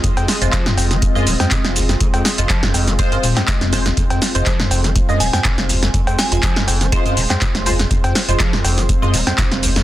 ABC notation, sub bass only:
X:1
M:4/4
L:1/16
Q:"Swing 16ths" 1/4=122
K:Fm
V:1 name="Sub bass" clef=bass
F,,, z2 F,,, z2 F,,,3 z E,,, z2 F,,,3 | F,,, z2 F,,, z2 F,,,3 z E,,, z2 F,,,3 | F,,, z2 F,,, z2 F,,,3 z E,,, z2 F,,,3 | F,,, z2 F,,, z2 F,,,3 z E,,, z2 F,,,3 |
F,,, z2 F,,, z2 F,,,3 z E,,, z2 F,,,3 |]